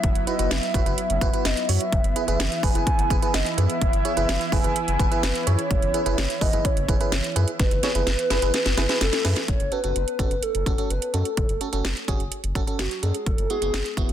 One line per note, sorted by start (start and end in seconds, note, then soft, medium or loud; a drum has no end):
0.00 0.12 F#1 loud
0.00 1.89 F#3 medium
0.00 9.45 B3 medium
0.00 1.89 E4 medium
0.00 0.24 E5 loud
0.00 kick loud
0.00 closed hi-hat medium
0.15 0.24 F#1 medium
0.15 closed hi-hat medium
0.27 0.35 E4 medium
0.27 0.35 F#4 medium
0.27 0.35 B4 medium
0.27 0.52 D#5 loud
0.27 closed hi-hat medium
0.39 0.48 F#1 loud
0.39 0.54 E4 medium
0.39 0.54 F#4 medium
0.39 0.54 B4 medium
0.39 closed hi-hat medium
0.51 0.60 F#1 loud
0.51 1.45 E5 loud
0.51 snare loud
0.51 closed hi-hat medium
0.63 closed hi-hat medium
0.74 0.83 F#1 loud
0.74 0.82 E4 medium
0.74 0.82 F#4 medium
0.74 0.82 B4 medium
0.74 kick loud
0.74 closed hi-hat medium
0.86 0.95 F#1 medium
0.86 1.01 E4 medium
0.86 1.01 F#4 medium
0.86 1.01 B4 medium
0.86 closed hi-hat medium
0.98 closed hi-hat medium
1.10 1.19 F#1 loud
1.10 closed hi-hat medium
1.21 1.30 F#1 loud
1.21 1.29 E4 medium
1.21 1.29 F#4 medium
1.21 1.29 B4 loud
1.21 kick medium
1.21 closed hi-hat medium
1.33 1.48 E4 medium
1.33 1.48 F#4 medium
1.33 1.48 B4 medium
1.33 closed hi-hat medium
1.45 1.54 F#1 loud
1.45 1.70 D#5 loud
1.45 snare loud
1.45 closed hi-hat medium
1.57 closed hi-hat medium
1.69 1.78 F#2 loud
1.69 1.84 E4 medium
1.69 1.84 F#4 medium
1.69 1.84 C#5 medium
1.69 2.63 E5 loud
1.69 open hi-hat medium
1.81 closed hi-hat medium
1.92 2.01 F#1 loud
1.92 9.44 E3 medium
1.92 9.44 E4 medium
1.92 kick loud
1.92 closed hi-hat medium
2.04 2.13 F#1 loud
2.04 closed hi-hat medium
2.16 2.23 E4 medium
2.16 2.23 G#4 medium
2.16 2.23 B4 medium
2.16 closed hi-hat medium
2.28 2.37 F#1 loud
2.28 2.43 E4 medium
2.28 2.43 G#4 medium
2.28 2.43 B4 medium
2.28 closed hi-hat medium
2.40 2.48 F#1 loud
2.40 snare loud
2.40 closed hi-hat medium
2.52 closed hi-hat medium
2.63 2.72 F#1 loud
2.63 2.71 E4 medium
2.63 2.71 G#4 medium
2.63 2.71 B4 medium
2.63 3.36 G#5 loud
2.63 kick loud
2.63 open hi-hat medium
2.75 2.84 F#1 medium
2.75 2.90 E4 medium
2.75 2.90 G#4 medium
2.75 2.90 B4 medium
2.75 closed hi-hat medium
2.87 kick loud
2.87 closed hi-hat medium
2.99 3.08 F#1 loud
2.99 closed hi-hat medium
3.10 3.19 F#1 loud
3.10 3.18 E4 medium
3.10 3.18 G#4 medium
3.10 3.18 B4 medium
3.10 kick medium
3.10 closed hi-hat medium
3.22 3.37 E4 medium
3.22 3.37 G#4 medium
3.22 3.37 B4 medium
3.22 closed hi-hat medium
3.34 3.43 F#1 loud
3.34 3.59 D#5 loud
3.34 snare loud
3.34 closed hi-hat medium
3.46 closed hi-hat medium
3.58 3.67 F#2 loud
3.58 3.72 E4 medium
3.58 3.72 G#4 medium
3.58 3.72 B4 medium
3.58 4.54 E5 loud
3.58 closed hi-hat medium
3.70 closed hi-hat medium
3.81 3.90 F#1 loud
3.81 kick loud
3.81 closed hi-hat medium
3.93 4.02 F#1 loud
3.93 closed hi-hat medium
4.05 4.12 E4 medium
4.05 4.12 G#4 medium
4.05 4.12 C#5 medium
4.05 closed hi-hat medium
4.17 4.26 F#1 loud
4.17 4.32 E4 medium
4.17 4.32 G#4 medium
4.17 4.32 B4 medium
4.17 closed hi-hat medium
4.29 4.38 F#1 loud
4.29 snare loud
4.29 closed hi-hat medium
4.41 closed hi-hat medium
4.52 4.61 F#1 loud
4.52 4.60 E4 medium
4.52 4.60 G#4 medium
4.52 4.60 B4 medium
4.52 5.25 G#5 loud
4.52 kick loud
4.52 open hi-hat medium
4.64 4.73 F#1 medium
4.64 4.79 E4 medium
4.64 4.79 G#4 medium
4.64 4.79 B4 medium
4.64 closed hi-hat medium
4.76 closed hi-hat medium
4.88 4.97 F#1 loud
4.88 closed hi-hat medium
4.99 5.08 F#1 loud
4.99 5.07 E4 medium
4.99 5.07 G#4 medium
4.99 5.07 B4 medium
4.99 kick medium
4.99 closed hi-hat medium
5.11 5.26 E4 medium
5.11 5.26 G#4 medium
5.11 5.26 B4 medium
5.11 closed hi-hat medium
5.23 5.32 F#1 loud
5.23 5.49 B4 loud
5.23 snare loud
5.23 closed hi-hat medium
5.35 closed hi-hat medium
5.47 5.56 F#2 loud
5.47 5.62 E4 medium
5.47 5.62 G#4 medium
5.47 5.62 C#5 medium
5.47 6.43 C#5 loud
5.47 closed hi-hat medium
5.59 closed hi-hat medium
5.71 5.79 F#1 loud
5.71 kick loud
5.71 closed hi-hat medium
5.82 5.91 F#1 loud
5.82 closed hi-hat medium
5.94 6.02 E4 medium
5.94 6.02 G#4 medium
5.94 6.01 B4 medium
5.94 closed hi-hat medium
6.06 6.15 F#1 loud
6.06 6.21 E4 medium
6.06 6.21 G#4 medium
6.06 6.21 B4 medium
6.06 closed hi-hat medium
6.18 6.27 F#1 loud
6.18 snare loud
6.18 closed hi-hat medium
6.30 closed hi-hat medium
6.41 6.50 F#1 loud
6.41 6.49 E4 medium
6.41 6.49 G#4 medium
6.41 6.49 B4 medium
6.41 6.66 D#5 loud
6.41 kick loud
6.41 open hi-hat medium
6.53 6.62 F#1 medium
6.53 6.68 E4 medium
6.53 6.68 G#4 medium
6.53 6.68 B4 medium
6.53 closed hi-hat medium
6.65 7.36 C#5 medium
6.65 kick loud
6.65 closed hi-hat medium
6.77 6.86 F#1 loud
6.77 closed hi-hat medium
6.88 6.97 F#1 loud
6.88 6.96 E4 medium
6.88 6.96 G#4 medium
6.88 6.96 B4 medium
6.88 kick medium
6.88 closed hi-hat medium
7.01 7.15 E4 medium
7.01 7.15 G#4 medium
7.01 7.15 B4 medium
7.01 closed hi-hat medium
7.12 7.21 F#1 loud
7.12 snare loud
7.12 closed hi-hat medium
7.24 closed hi-hat medium
7.36 7.45 F#2 loud
7.36 7.51 E4 medium
7.36 7.51 G#4 medium
7.36 7.51 B4 loud
7.36 closed hi-hat medium
7.48 closed hi-hat soft
7.59 7.68 F#1 loud
7.59 8.97 B4 loud
7.59 kick loud
7.59 snare medium
7.59 closed hi-hat medium
7.71 7.80 F#1 medium
7.71 closed hi-hat medium
7.83 7.91 E4 medium
7.83 7.91 G#4 medium
7.83 7.91 C#5 medium
7.83 snare medium
7.83 closed hi-hat medium
7.95 8.04 F#1 loud
7.95 8.10 E4 medium
7.95 8.10 G#4 medium
7.95 8.10 B4 medium
7.95 closed hi-hat medium
8.07 8.16 F#1 loud
8.07 snare medium
8.07 closed hi-hat medium
8.19 closed hi-hat medium
8.30 8.39 F#1 loud
8.30 8.38 E4 medium
8.30 8.38 G#4 medium
8.30 8.38 B4 loud
8.30 snare medium
8.30 closed hi-hat medium
8.42 8.51 F#1 loud
8.42 8.57 E4 medium
8.42 8.57 G#4 medium
8.42 8.57 B4 medium
8.42 closed hi-hat medium
8.54 snare medium
8.54 closed hi-hat medium
8.66 8.75 F#1 loud
8.66 snare medium
8.66 closed hi-hat medium
8.77 8.86 F#1 loud
8.77 8.85 E4 medium
8.77 8.85 G#4 medium
8.77 8.85 B4 loud
8.77 snare loud
8.77 closed hi-hat medium
8.89 9.04 E4 medium
8.89 9.04 G#4 medium
8.89 9.04 B4 medium
8.89 snare medium
8.89 closed hi-hat medium
9.01 9.10 F#1 loud
9.01 9.45 A4 loud
9.01 snare loud
9.01 closed hi-hat medium
9.13 snare medium
9.13 closed hi-hat medium
9.25 9.34 F#2 loud
9.25 9.39 E4 medium
9.25 9.39 G#4 medium
9.25 9.39 B4 medium
9.25 snare loud
9.25 open hi-hat medium
9.36 snare medium
9.36 closed hi-hat soft
9.48 9.57 F#1 loud
9.48 9.74 C#5 loud
9.48 kick loud
9.48 closed hi-hat medium
9.60 9.69 F#1 medium
9.60 closed hi-hat medium
9.72 9.79 C#4 medium
9.72 9.79 F#4 medium
9.72 9.79 A4 medium
9.72 10.44 B4 loud
9.72 closed hi-hat medium
9.84 9.93 F#1 medium
9.84 9.98 C#4 medium
9.84 9.99 F#4 medium
9.84 9.99 A4 medium
9.84 closed hi-hat soft
9.96 10.05 F#1 loud
9.96 closed hi-hat medium
10.08 closed hi-hat soft
10.19 10.28 F#1 loud
10.19 10.34 C#4 medium
10.19 10.34 F#4 medium
10.19 10.34 A4 medium
10.19 kick medium
10.19 closed hi-hat medium
10.31 10.40 F#1 medium
10.31 closed hi-hat soft
10.43 10.92 A4 medium
10.43 closed hi-hat medium
10.55 10.64 F#1 loud
10.55 closed hi-hat medium
10.66 10.75 F#1 loud
10.66 10.74 C#4 medium
10.66 10.74 F#4 medium
10.66 10.74 A4 medium
10.66 kick medium
10.66 closed hi-hat medium
10.78 10.93 C#4 medium
10.78 10.93 F#4 medium
10.78 10.93 A4 medium
10.78 closed hi-hat soft
10.90 10.99 F#1 loud
10.90 11.15 B4 medium
10.90 closed hi-hat medium
11.02 closed hi-hat medium
11.14 11.23 F#2 medium
11.14 11.28 C#4 medium
11.14 11.28 F#4 medium
11.14 11.28 A4 medium
11.14 12.08 A4 medium
11.14 closed hi-hat medium
11.25 closed hi-hat soft
11.37 11.46 F#1 loud
11.37 kick loud
11.37 closed hi-hat medium
11.49 11.58 F#1 medium
11.49 closed hi-hat medium
11.61 11.68 C#4 medium
11.61 11.68 F#4 medium
11.61 11.68 A4 medium
11.61 closed hi-hat medium
11.73 11.82 F#1 medium
11.73 11.88 C#4 medium
11.73 11.88 F#4 medium
11.73 11.87 A4 medium
11.73 closed hi-hat soft
11.85 11.94 F#1 loud
11.85 snare loud
11.85 closed hi-hat medium
11.97 closed hi-hat soft
12.08 12.17 F#1 medium
12.08 12.23 C#4 medium
12.08 12.23 F#4 medium
12.08 12.23 G#4 medium
12.08 kick medium
12.08 closed hi-hat medium
12.20 12.29 F#1 medium
12.20 closed hi-hat soft
12.32 closed hi-hat medium
12.44 12.53 F#1 medium
12.44 closed hi-hat medium
12.55 12.64 F#1 loud
12.55 12.63 C#4 medium
12.55 12.63 F#4 medium
12.55 12.63 A4 medium
12.55 kick medium
12.55 closed hi-hat medium
12.67 12.82 C#4 medium
12.67 12.82 F#4 medium
12.67 12.82 A4 medium
12.67 closed hi-hat soft
12.79 12.88 F#1 medium
12.79 13.04 F#4 medium
12.79 snare loud
12.79 closed hi-hat medium
12.91 closed hi-hat medium
13.03 13.12 F#2 loud
13.03 13.17 C#4 medium
13.03 13.18 F#4 medium
13.03 13.28 G#4 loud
13.03 13.17 A4 medium
13.03 closed hi-hat medium
13.14 closed hi-hat soft
13.26 13.35 F#1 loud
13.26 13.50 A4 loud
13.26 kick loud
13.26 closed hi-hat medium
13.38 13.47 F#1 medium
13.38 closed hi-hat medium
13.50 13.57 B3 medium
13.50 13.57 E4 medium
13.50 13.57 F#4 medium
13.50 14.13 G#4 loud
13.50 closed hi-hat medium
13.62 13.71 F#1 loud
13.62 13.77 B3 medium
13.62 13.77 E4 medium
13.62 13.77 F#4 medium
13.62 closed hi-hat soft
13.73 13.82 F#1 loud
13.73 snare loud
13.73 closed hi-hat medium
13.86 closed hi-hat soft
13.97 14.06 F#1 medium
13.97 14.12 B3 medium
13.97 14.12 E4 medium
13.97 14.12 F#4 medium
13.97 kick medium
13.97 closed hi-hat medium
14.09 14.13 F#1 medium
14.09 closed hi-hat soft